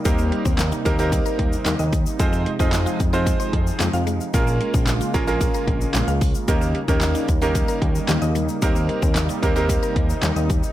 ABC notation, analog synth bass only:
X:1
M:4/4
L:1/16
Q:1/4=112
K:Cphr
V:1 name="Analog synth bass" clef=bass
E,,3 E,,3 E,,4 E,,2 E,, E,,3 | F,,3 F,,3 F,,4 F,,2 F,, F,,3 | B,,,3 B,,,3 B,,,4 B,,,2 B,,, D,,3 | E,,3 E,,3 E,,4 E,,2 E,, E,,3 |
E,,3 E,,3 E,,4 E,,2 E,, E,,3 |]